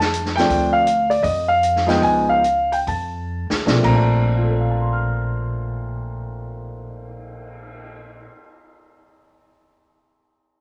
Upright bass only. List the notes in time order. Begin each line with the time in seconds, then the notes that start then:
Already playing: F2
0.49 D2
1.23 F2
2.02 C#2
2.87 F2
3.51 D#2
3.66 B1
3.83 A#1